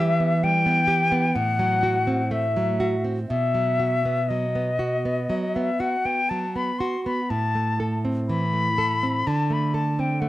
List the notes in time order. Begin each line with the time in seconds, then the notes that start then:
Already playing: E3 G3 G4 E5
0.20 B3
0.43 G3 G5
0.66 B3
0.88 G4
1.12 B3
1.34 A2 F#5
1.59 F#3
1.83 F#4
2.07 C4
2.31 A3 E5
2.57 F#3
2.80 F#4
3.04 C4
3.29 B2 E5
3.54 F#3
3.80 F#4
4.05 B3
4.29 F#3 D#5
4.55 B3
4.79 F#4
5.05 B3
5.30 F#3
5.55 B3 E5
5.80 F#4 F#5
6.05 B3 G5
6.29 F#3 A5
6.56 B3 B5
6.79 F#4 C6
7.06 B3 B5
7.30 A2 A5
7.55 A3
7.80 A4
8.05 C4
8.29 E3 B5
8.53 A3
8.78 A4
9.03 C4
9.27 D3 A5
9.50 A3 B5
9.74 A4 A5
9.99 C4 G5
10.20 A3 F#5